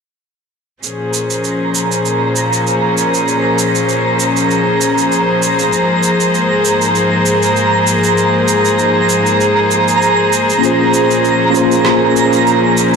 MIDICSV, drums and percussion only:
0, 0, Header, 1, 2, 480
1, 0, Start_track
1, 0, Key_signature, -5, "minor"
1, 0, Tempo, 612245
1, 645, Time_signature, 4, 2, 24, 8
1, 10161, End_track
2, 0, Start_track
2, 0, Title_t, "Drums"
2, 652, Note_on_c, 9, 82, 29
2, 731, Note_off_c, 9, 82, 0
2, 891, Note_on_c, 9, 82, 67
2, 969, Note_off_c, 9, 82, 0
2, 1021, Note_on_c, 9, 82, 37
2, 1100, Note_off_c, 9, 82, 0
2, 1129, Note_on_c, 9, 82, 28
2, 1208, Note_off_c, 9, 82, 0
2, 1370, Note_on_c, 9, 82, 72
2, 1448, Note_off_c, 9, 82, 0
2, 1502, Note_on_c, 9, 82, 38
2, 1580, Note_off_c, 9, 82, 0
2, 1610, Note_on_c, 9, 82, 28
2, 1688, Note_off_c, 9, 82, 0
2, 1849, Note_on_c, 9, 82, 59
2, 1928, Note_off_c, 9, 82, 0
2, 1982, Note_on_c, 9, 82, 38
2, 2061, Note_off_c, 9, 82, 0
2, 2092, Note_on_c, 9, 82, 28
2, 2171, Note_off_c, 9, 82, 0
2, 2332, Note_on_c, 9, 82, 66
2, 2411, Note_off_c, 9, 82, 0
2, 2462, Note_on_c, 9, 82, 39
2, 2540, Note_off_c, 9, 82, 0
2, 2571, Note_on_c, 9, 82, 29
2, 2649, Note_off_c, 9, 82, 0
2, 2811, Note_on_c, 9, 82, 69
2, 2890, Note_off_c, 9, 82, 0
2, 2941, Note_on_c, 9, 82, 39
2, 3019, Note_off_c, 9, 82, 0
2, 3048, Note_on_c, 9, 82, 28
2, 3126, Note_off_c, 9, 82, 0
2, 3290, Note_on_c, 9, 82, 70
2, 3368, Note_off_c, 9, 82, 0
2, 3423, Note_on_c, 9, 82, 39
2, 3501, Note_off_c, 9, 82, 0
2, 3532, Note_on_c, 9, 82, 28
2, 3610, Note_off_c, 9, 82, 0
2, 3772, Note_on_c, 9, 82, 65
2, 3850, Note_off_c, 9, 82, 0
2, 3903, Note_on_c, 9, 82, 39
2, 3981, Note_off_c, 9, 82, 0
2, 4013, Note_on_c, 9, 82, 28
2, 4091, Note_off_c, 9, 82, 0
2, 4253, Note_on_c, 9, 82, 73
2, 4331, Note_off_c, 9, 82, 0
2, 4383, Note_on_c, 9, 82, 42
2, 4461, Note_off_c, 9, 82, 0
2, 4489, Note_on_c, 9, 82, 32
2, 4568, Note_off_c, 9, 82, 0
2, 4728, Note_on_c, 9, 82, 69
2, 4806, Note_off_c, 9, 82, 0
2, 4862, Note_on_c, 9, 82, 39
2, 4941, Note_off_c, 9, 82, 0
2, 4972, Note_on_c, 9, 82, 30
2, 5050, Note_off_c, 9, 82, 0
2, 5213, Note_on_c, 9, 82, 73
2, 5291, Note_off_c, 9, 82, 0
2, 5342, Note_on_c, 9, 82, 38
2, 5421, Note_off_c, 9, 82, 0
2, 5450, Note_on_c, 9, 82, 30
2, 5528, Note_off_c, 9, 82, 0
2, 5689, Note_on_c, 9, 82, 63
2, 5768, Note_off_c, 9, 82, 0
2, 5821, Note_on_c, 9, 82, 39
2, 5900, Note_off_c, 9, 82, 0
2, 5928, Note_on_c, 9, 82, 28
2, 6006, Note_off_c, 9, 82, 0
2, 6170, Note_on_c, 9, 82, 76
2, 6248, Note_off_c, 9, 82, 0
2, 6300, Note_on_c, 9, 82, 44
2, 6379, Note_off_c, 9, 82, 0
2, 6408, Note_on_c, 9, 82, 32
2, 6487, Note_off_c, 9, 82, 0
2, 6649, Note_on_c, 9, 82, 72
2, 6727, Note_off_c, 9, 82, 0
2, 6781, Note_on_c, 9, 82, 41
2, 6859, Note_off_c, 9, 82, 0
2, 6890, Note_on_c, 9, 82, 28
2, 6968, Note_off_c, 9, 82, 0
2, 7129, Note_on_c, 9, 82, 74
2, 7207, Note_off_c, 9, 82, 0
2, 7262, Note_on_c, 9, 82, 42
2, 7340, Note_off_c, 9, 82, 0
2, 7373, Note_on_c, 9, 82, 32
2, 7452, Note_off_c, 9, 82, 0
2, 7612, Note_on_c, 9, 82, 64
2, 7691, Note_off_c, 9, 82, 0
2, 7746, Note_on_c, 9, 82, 39
2, 7824, Note_off_c, 9, 82, 0
2, 7856, Note_on_c, 9, 82, 28
2, 7934, Note_off_c, 9, 82, 0
2, 8096, Note_on_c, 9, 82, 75
2, 8175, Note_off_c, 9, 82, 0
2, 8229, Note_on_c, 9, 82, 41
2, 8308, Note_off_c, 9, 82, 0
2, 8337, Note_on_c, 9, 82, 30
2, 8415, Note_off_c, 9, 82, 0
2, 8575, Note_on_c, 9, 82, 67
2, 8653, Note_off_c, 9, 82, 0
2, 8708, Note_on_c, 9, 82, 39
2, 8786, Note_off_c, 9, 82, 0
2, 8815, Note_on_c, 9, 82, 28
2, 8894, Note_off_c, 9, 82, 0
2, 9054, Note_on_c, 9, 82, 77
2, 9133, Note_off_c, 9, 82, 0
2, 9185, Note_on_c, 9, 82, 38
2, 9263, Note_off_c, 9, 82, 0
2, 9288, Note_on_c, 9, 37, 66
2, 9295, Note_on_c, 9, 82, 28
2, 9366, Note_off_c, 9, 37, 0
2, 9373, Note_off_c, 9, 82, 0
2, 9535, Note_on_c, 9, 82, 68
2, 9614, Note_off_c, 9, 82, 0
2, 9665, Note_on_c, 9, 82, 38
2, 9744, Note_off_c, 9, 82, 0
2, 9775, Note_on_c, 9, 82, 29
2, 9853, Note_off_c, 9, 82, 0
2, 10014, Note_on_c, 9, 82, 72
2, 10092, Note_off_c, 9, 82, 0
2, 10161, End_track
0, 0, End_of_file